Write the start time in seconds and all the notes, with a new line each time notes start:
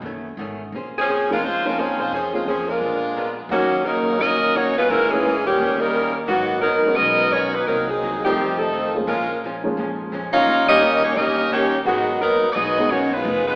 Already playing: D#3 A3 B3 C#4 F#4
0.02 F#1 B2 D#3 A3
0.06 C#4
0.37 G#1 B2 D#3 A3
0.41 C#4
0.72 A#1 A#3 C#4 G#4
0.77 C5
0.98 F3 C4 C#4 G#4
1.08 A#3 C#4 G#4 C5
1.30 F3 G#3 A#3 C4 C#4 F4 G#4 A#4
1.42 C#2 G#3 A#3 C#4 F4 G#4 C5
1.65 F3 G#3 A#3 C4 C#4 D#4 F4 A#4
1.79 F3 A#3 C4 C#4 G#4 C5
1.98 B1 G#3 C#4 F4 C5
2.11 F2 F3 A#3 C4 C#4 G#4
2.16 C5
2.33 F3 G#3 A#3 C4 C#4 F4 G#4
2.46 F2 F3 A#3 C4 C#4 G#4
2.50 G#4 C5
2.67 D3 F3 G#3 A#3 D4 F4 A#4
2.81 A#1 A#2 G#3 B3
2.85 D4
3.17 A#2 G#3 B3 D4
3.49 D#2 A#2 C#3 D#3 F#3 A#3 C#4 D#4 F#4 A#4
3.53 F#4
3.84 C#3 D#3 F#3 A#3 C#4 D#4 F#4 A#4
4.18 A#1 D#3 F#3 A#3 C#4 D#4 F#4 A#4 D#5
4.22 C#4 F#4
4.54 D#3 F#3 A#3 C#4 D#4 F#4 C#5
4.75 G#3 B3 C#4 F4 B4
4.89 A#1 A#2 C#3 E3 G#3 A#3 C#4 E4 A#4
4.93 C#4
5.09 C#3 E3 G#3 A#3 C#4 G#4
5.13 A#3 C#4 E4 A#4
5.25 A#2 E3 G#3 C#4
5.44 A#2 C#3 D#3 G3 A#3 C#4 G4
5.58 D#2 D#3 A#3 C#4
5.63 G4
5.78 C#3 G3 A#3 C#4 D#4 A#4
5.95 D#3 A#3 C#4 G4
6.26 G#1 G#2 B2 D#3 F#3 A#3 B3 F#4
6.31 F#3 B3 C#4
6.61 G#2 D#3 F#3 B3 C#4 D#4 A#4
6.85 G#3 B3 C#4 F#4 A#4, muted upright bass stroke
6.96 B1 G#2 F#3 B3 D#4 F#4 A#4 D#5
7.01 C#4
7.32 G#2 D#3 F#3 B3 C#4 F#4 A#4 C#5
7.54 D#3 F#3 A#3 B3 D#4 B4
7.67 C2 C3 D#3 F#3 A#3 C4 D#4 A#4
7.89 A#2 D#3 F#3 G#3 C4 D#4 G#4
8.02 C3 F#3 A#3 D#4
8.24 C3 D#3 F3 G3 A3 C4 D#4 G4 A4
8.37 F2 D#3 A3 C4
8.58 C3 D#3 F3 A3 C4 D#4 A4
8.72 F2 D#3 A3 C4
8.95 F3 G#3 A#3 C#4 G#4
9.06 A#1 A#2 C#3 F3 G#3 A#3 C#4 F4 A#4
9.44 A#2 F3 G#3 C#4
9.64 F3 G#3 A#3 C#4 G#4
9.77 F2 A#2 F3 G#3 C#4
10.12 A#2 F3 G#3 C#4
10.33 A#3 C#4 D#4 F4 A#4 C#5 F5, muted upright bass stroke
10.46 D#2 D#3 A#3 C#4 G4
10.68 D#3 G3 A#3 C#4 D#4 G4 A#4 D#5
10.80 C#2 D#3 A#3 C#4 G4
11.04 G3 A#3 C#4 D#4 G4 C#5
11.15 A#1 D#3 G3 A#3 C#4 D#4 G4 A#4 D#5
11.19 G4
11.50 D#3 G3 A#3 C#4 D#4 G4 C#5
11.85 G#1 G#2 B2 D#3 F#3 G#3 B3 D#4 F#4 G#4
11.89 B3 D#4
12.20 G#2 F#3 A#3 B3 D#4 A#4
12.43 muted upright bass stroke
12.52 B1 G#2 F#3 B3 D#4 F#4 G#4 D5 D#5
12.56 B3 D#4
12.78 F#3 G#3 B3 D#4 G#4
12.90 G#2 F#3 A#3 B3 C#4 D#4 F#4 C#5
13.13 D#3 G#3 B3 D#4 F4 B4
13.24 F1 F3 B3 D#4 G#4
13.48 D#3 G#3 B3 D#4 F4 B4